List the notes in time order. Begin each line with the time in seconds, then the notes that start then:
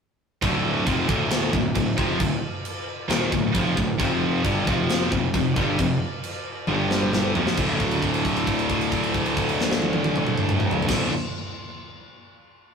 0.42 D1 D2 A2 D3, kick, crash
0.86 F1 F2 C3 F3, kick, crash
1.08 D1 D2 A2 D3, kick
1.30 snare, crash
1.53 D1 D2 A2, kick
1.75 D1 D2 A2, kick, crash
1.97 F1 F2 C3 F3, kick
2.19 D1 D2 A2, kick, crash
2.65 crash
3.09 D#1 D#2 A#2 D#3, snare, crash
3.32 D1 D2 A2, kick
3.55 F1 F2 C3 F3, kick, crash
3.77 D1 D2 A2, kick
3.99 F1 F2 C3 F3, kick, crash
4.44 G1 G2 D3 G3, kick, crash
4.66 F1 F2 C3 F3, kick
4.89 snare, crash
5.11 F1 F2 C3, kick
5.34 F1 F2 C3, kick, crash
5.56 G1 G2 D3 G3, kick
5.79 F1 F2 C3, kick, crash
6.24 crash
6.67 G1 G2 D3 G3, high tom
6.91 snare
7.01 mid tom
7.13 snare
7.35 F1 F2 C3 F3, floor tom
7.47 snare
7.57 D1 D2 A2 D3, kick, crash
7.80 kick, crash
7.91 crash
8.02 kick, crash
8.14 crash
8.25 kick, crash
8.36 crash
8.47 kick, crash
8.59 crash
8.69 kick, crash
8.81 crash
8.92 kick, crash
9.04 crash
9.14 kick, crash
9.26 crash
9.37 kick, crash
9.49 crash
9.61 snare
9.72 snare
9.82 high tom
9.93 high tom
10.04 high tom
10.16 mid tom
10.27 mid tom
10.38 mid tom
10.49 mid tom
10.60 mid tom
10.71 floor tom
10.82 floor tom
10.87 D1 D2 A2 D3, kick, snare, crash